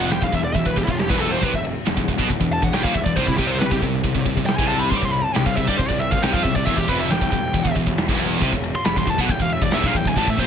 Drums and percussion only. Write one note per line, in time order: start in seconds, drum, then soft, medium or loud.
0.11 snare loud
0.11 ride loud
0.22 kick medium
0.33 kick medium
0.33 ride medium
0.54 kick loud
0.54 ride loud
0.66 kick medium
0.77 kick medium
0.77 ride medium
0.88 kick medium
0.99 snare loud
0.99 ride loud
1.10 kick loud
1.21 ride medium
1.43 kick loud
1.43 ride loud
1.54 kick medium
1.65 ride medium
1.86 snare loud
1.86 ride loud
1.97 kick medium
2.08 kick medium
2.08 ride medium
2.19 kick medium
2.30 kick medium
2.30 ride loud
2.41 kick medium
2.52 ride medium
2.63 kick loud
2.63 snare soft
2.73 snare loud
2.73 ride loud
2.84 kick loud
2.95 kick medium
2.95 ride medium
3.06 kick medium
3.17 kick medium
3.17 ride medium
3.28 kick medium
3.39 kick medium
3.39 ride medium
3.61 snare loud
3.61 ride loud
3.71 kick medium
3.82 kick medium
3.82 ride medium
4.04 kick loud
4.04 ride loud
4.15 kick medium
4.25 kick medium
4.25 ride medium
4.37 kick medium
4.48 snare loud
4.48 ride loud
4.58 kick loud
4.70 ride medium
4.91 kick loud
4.91 ride loud
5.02 kick medium
5.13 ride medium
5.35 snare loud
5.35 ride loud
5.46 kick medium
5.57 kick medium
5.57 ride medium
5.68 kick medium
5.79 kick medium
5.79 ride loud
5.90 kick medium
6.01 ride medium
6.12 kick medium
6.23 snare loud
6.23 ride loud
6.34 kick loud
6.44 kick medium
6.44 ride medium
6.56 kick medium
6.67 kick medium
6.67 crash loud
6.78 kick medium
6.89 kick medium
6.89 ride medium
7.11 snare loud
7.11 ride medium
7.21 kick loud
7.32 kick medium
7.32 ride medium
7.54 kick medium
7.54 ride medium
7.65 kick medium
7.76 kick medium
7.76 ride medium
7.87 kick medium
7.87 snare soft
7.97 snare loud
7.97 ride loud
8.09 kick loud
8.19 ride medium
8.41 kick loud
8.41 ride medium
8.53 kick medium
8.64 ride medium
8.85 snare loud
8.85 ride loud
8.96 kick loud
9.07 kick medium
9.07 ride medium
9.18 kick medium
9.29 kick loud
9.29 ride loud
9.40 kick medium
9.50 ride medium
9.62 kick medium
9.71 snare loud
9.71 ride loud
9.83 kick loud
9.94 kick medium
9.94 ride medium
10.05 kick medium
10.16 kick loud
10.16 ride loud
10.27 kick medium
10.37 kick medium
10.37 ride medium